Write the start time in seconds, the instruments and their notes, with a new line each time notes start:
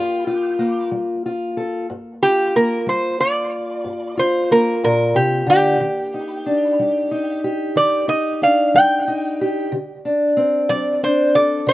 Already playing: steel-string acoustic guitar G2 A#3 F4 A#4, resonator guitar played with a steel bar G4
0.27 steel-string acoustic guitar F4
0.59 steel-string acoustic guitar A#3
0.92 steel-string acoustic guitar G3
1.26 steel-string acoustic guitar F4
1.57 steel-string acoustic guitar A4
1.90 steel-string acoustic guitar G2
2.23 steel-string acoustic guitar F4, resonator guitar played with a steel bar G4
2.56 steel-string acoustic guitar A#3, resonator guitar played with a steel bar A#4
2.87 steel-string acoustic guitar G3, resonator guitar played with a steel bar C5
3.20 steel-string acoustic guitar F4, resonator guitar played with a steel bar D5
3.84 steel-string acoustic guitar G2
4.17 steel-string acoustic guitar F4, resonator guitar played with a steel bar C5
4.51 steel-string acoustic guitar A#3, resonator guitar played with a steel bar A#4
4.84 steel-string acoustic guitar A#2, resonator guitar played with a steel bar A#4
5.14 steel-string acoustic guitar C3, resonator guitar played with a steel bar G4
5.47 steel-string acoustic guitar D3, resonator guitar played with a steel bar G4
5.81 steel-string acoustic guitar D#3
6.14 steel-string acoustic guitar D#4
6.46 steel-string acoustic guitar D4
6.79 steel-string acoustic guitar G3
7.11 steel-string acoustic guitar D#4
7.44 steel-string acoustic guitar G4
7.75 steel-string acoustic guitar D#3, resonator guitar played with a steel bar D5
8.08 steel-string acoustic guitar D#4, resonator guitar played with a steel bar D#5
8.42 steel-string acoustic guitar D4, resonator guitar played with a steel bar F5
8.74 steel-string acoustic guitar G3, resonator guitar played with a steel bar G5
9.08 steel-string acoustic guitar D#4
9.41 steel-string acoustic guitar G4
9.72 steel-string acoustic guitar D3
10.05 steel-string acoustic guitar D4
10.37 steel-string acoustic guitar C4
10.69 steel-string acoustic guitar F#3, resonator guitar played with a steel bar D5
11.03 steel-string acoustic guitar D4, resonator guitar played with a steel bar C5
11.35 steel-string acoustic guitar A4, resonator guitar played with a steel bar D5
11.67 steel-string acoustic guitar D3, resonator guitar played with a steel bar D5